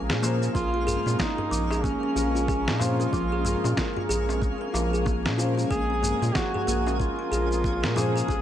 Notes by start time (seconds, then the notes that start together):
Already playing: A#1 F3 G#3 A#3 C#4 G#4 A#4 F5
0.09 A#2 G#4, snare, darbuka ka
0.21 F3 A#3 C#4 C5, shaker
0.42 C#4, shaker
0.53 A#1 F3 A#3 F4 G#4 A#4, kick, shaker
0.74 F4
0.87 G#4, darbuka dum, shaker
1.06 A#2 C4, darbuka ka, shaker
1.19 A#3 D#4, kick, snare, darbuka tek, shaker
1.38 A#4, darbuka dum
1.51 A#1 F3, shaker
1.71 G#4, darbuka tek, shaker
1.84 A#3 C#4, kick, shaker
2.03 C#4
2.15 A#1 F3 A#3 C#4 A#4, shaker
2.35 F4, shaker
2.48 G#4, kick, shaker
2.68 A#2 C4, snare, darbuka tek
2.80 F3 A#3 C#4 F4 C5, darbuka tek, darbuka dum, shaker
2.99 A#4, darbuka ka, shaker
3.11 A#1 F3 A#3 G#4, kick, shaker
3.32 G#4
3.45 A#3, darbuka dum, shaker
3.64 A#2 C#4, darbuka ka, darbuka tek, shaker
3.77 A#4, kick, snare, darbuka tek, shaker
3.97 F4, darbuka dum
4.09 A#1 G#4, shaker
4.29 C4, darbuka tek, shaker
4.42 A#3, kick, shaker
4.61 A#4, darbuka tek
4.73 A#1 F3 A#3 A#4, darbuka ka, darbuka tek, shaker
4.93 G#4, shaker
5.06 A#3, kick, darbuka ka, shaker
5.25 A#2 C#4, snare, darbuka ka
5.37 F3 A#3 C#4 A#4 C5, shaker
5.58 F4, shaker
5.69 A#1 G#3 A#3 G#4, kick, shaker
5.73 G#4
5.90 C4
6.03 A#3, darbuka dum, shaker
6.22 A#2 A#4, darbuka ka, shaker
6.34 F3 F#4, kick, snare, darbuka tek, shaker
6.54 G#4, darbuka dum
6.67 A#1 A#3, shaker
6.87 C#4, darbuka tek, shaker
7.00 F4 A#4, kick, shaker
7.19 F4
7.31 A#1 F3 A#3 G#4 A#4, shaker
7.51 C4, shaker
7.64 A#3, kick, shaker
7.83 A#2 A#4, snare, darbuka tek
7.95 F3 A#3 C#4 G#4 C5, darbuka tek, darbuka dum, shaker
8.16 G#4, darbuka ka, shaker
8.27 A#1 F3 A#3 G#4, kick, shaker